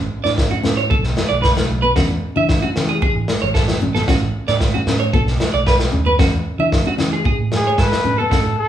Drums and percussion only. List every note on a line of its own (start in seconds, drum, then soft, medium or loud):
0.25 snare soft
0.38 kick medium
0.38 snare medium
0.64 snare medium
0.91 kick medium
1.04 snare soft
1.17 snare medium
1.44 kick medium
1.44 snare medium
1.57 snare medium
1.96 kick medium
1.96 snare medium
2.49 kick medium
2.49 snare medium
2.76 snare medium
3.02 kick medium
3.28 snare medium
3.55 kick medium
3.55 snare medium
3.68 snare medium
3.95 snare soft
4.08 kick medium
4.08 snare medium
4.47 snare soft
4.60 kick medium
4.60 snare medium
4.87 snare medium
5.14 kick medium
5.27 snare soft
5.40 snare medium
5.67 kick medium
5.67 snare medium
5.80 snare medium
6.19 kick loud
6.19 snare medium
6.72 kick medium
6.72 snare medium
6.99 snare medium
7.25 kick medium
7.52 snare medium
7.78 kick medium
7.78 snare medium
7.92 snare medium
8.31 kick medium
8.31 snare medium